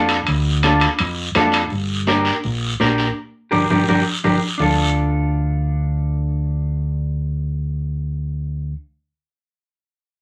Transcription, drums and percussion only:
0.09 high timbale medium
0.09 short guiro medium
0.27 high conga soft
0.27 high timbale medium
0.27 long guiro medium
0.63 high conga medium
0.63 high timbale medium
0.63 short guiro medium
0.80 high timbale medium
0.80 short guiro medium
0.99 high conga soft
0.99 high timbale medium
0.99 long guiro medium
1.35 high conga medium
1.35 high timbale medium
1.35 low timbale medium
1.35 short guiro medium
1.52 high timbale medium
1.52 short guiro medium
1.70 high conga soft
1.70 long guiro medium
2.07 high conga medium
2.07 short guiro medium
2.25 short guiro medium
2.44 high conga soft
2.44 long guiro medium
2.80 high conga medium
2.80 short guiro medium
2.98 short guiro medium
3.52 low conga medium
3.52 long guiro medium
3.70 low conga medium
3.70 long guiro medium
3.88 low conga medium
3.88 long guiro medium
4.24 low conga medium
4.60 low conga medium

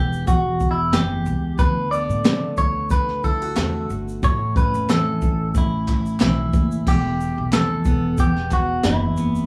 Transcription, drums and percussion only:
0.13 shaker soft
0.27 kick loud
0.27 shaker medium
0.60 kick medium
0.60 shaker soft
0.93 snare loud
0.93 clap medium
0.93 shaker medium
1.26 shaker medium
1.58 kick loud
1.58 shaker medium
1.93 shaker soft
2.10 shaker soft
2.25 snare loud
2.25 clap medium
2.25 shaker medium
2.57 kick medium
2.57 shaker medium
2.90 kick medium
2.90 shaker medium
3.09 snare soft
3.24 kick medium
3.24 shaker soft
3.56 snare loud
3.56 clap medium
3.56 shaker medium
3.90 shaker medium
4.08 shaker soft
4.23 kick loud
4.23 shaker medium
4.56 kick loud
4.56 shaker soft
4.74 shaker soft
4.89 snare loud
4.89 clap medium
4.89 shaker medium
5.22 kick medium
5.22 shaker medium
5.55 kick medium
5.55 shaker medium
5.87 kick medium
5.87 clap medium
5.87 shaker soft
6.06 shaker soft
6.20 snare loud
6.20 clap medium
6.20 shaker medium
6.53 kick loud
6.53 shaker medium
6.71 shaker soft
6.87 kick loud
6.87 crash medium
7.21 shaker medium
7.52 snare loud
7.52 clap medium
7.52 shaker medium
7.85 kick medium
7.85 shaker medium
8.18 kick loud
8.18 shaker medium
8.36 snare soft
8.51 kick medium
8.51 clap medium
8.51 shaker soft
8.83 snare loud
8.83 clap medium
8.83 shaker medium
9.17 shaker medium
9.35 shaker soft

